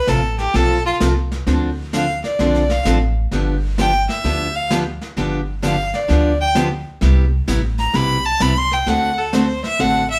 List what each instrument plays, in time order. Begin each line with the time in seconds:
Already playing: fiddle B4
0.07 upright bass A1, steel-string acoustic guitar C3 F3 C4 F4 A4, fiddle A4, snare, hi-hat pedal
0.39 fiddle G4, snare
0.54 upright bass B1, steel-string acoustic guitar C3 F3 C4 F4 A4, fiddle A4, brush sweep, snare
0.86 fiddle F4
1.00 upright bass C2, steel-string acoustic guitar C3 F3 C4 F4 A4, snare, hi-hat pedal
1.32 snare
1.47 upright bass D2, steel-string acoustic guitar D3 F3 C4 D4 A4, brush sweep, snare
1.93 steel-string acoustic guitar D3 F3 C4 D4 A4, fiddle F5, snare, hi-hat pedal
2.24 fiddle D5, snare
2.39 upright bass B1, steel-string acoustic guitar D3 F3 C4 D4 A4, brush sweep, snare
2.54 snare
2.70 fiddle F5, snare
2.85 upright bass A1, steel-string acoustic guitar D3 F3 C4 D4 A4, snare, hi-hat pedal
3.31 upright bass G1, steel-string acoustic guitar D3 F3 B3 D4 G4, brush sweep, snare
3.78 steel-string acoustic guitar D3 F3 B3 D4 G4, fiddle G5, snare, hi-hat pedal
4.09 fiddle E5, snare
4.24 upright bass D2, steel-string acoustic guitar D3 F3 B3 D4 G4, brush sweep, snare
4.56 fiddle F5
4.70 steel-string acoustic guitar D3 F3 B3 D4 G4, snare, hi-hat pedal
5.01 snare
5.17 upright bass G1, steel-string acoustic guitar D3 F3 B3 D4 G4, brush sweep, snare
5.62 steel-string acoustic guitar D3 F3 B3 D4 G4, fiddle F5, snare, hi-hat pedal
5.94 fiddle D5, snare
6.08 upright bass D2, steel-string acoustic guitar D3 F3 B3 D4 G4, brush sweep, snare
6.41 fiddle G5
6.55 steel-string acoustic guitar D3 F3 B3 D4 G4, snare, hi-hat pedal
7.01 upright bass C2, steel-string acoustic guitar C3 G3 B3 E4 G4, brush sweep, snare
7.48 upright bass A1, steel-string acoustic guitar C3 G3 B3 E4 G4, snare, hi-hat pedal
7.78 fiddle A#5, snare
7.94 upright bass B1, steel-string acoustic guitar C3 G3 B3 E4 G4, fiddle B5, brush sweep, snare
8.25 fiddle A5
8.40 upright bass C2, steel-string acoustic guitar C3 G3 B3 E4 G4, fiddle B5, snare, hi-hat pedal
8.57 fiddle C6
8.71 fiddle G5, snare
8.86 upright bass D2, steel-string acoustic guitar D3 A3 C4 F#4 A4, fiddle F#5, brush sweep, snare
9.18 fiddle A4
9.33 steel-string acoustic guitar D3 A3 C4 F#4 A4, fiddle C5, snare, hi-hat pedal
9.64 fiddle E5, snare
9.79 upright bass A1, steel-string acoustic guitar D3 A3 C4 F#4 A4, fiddle F#5, brush sweep, snare
10.10 fiddle E5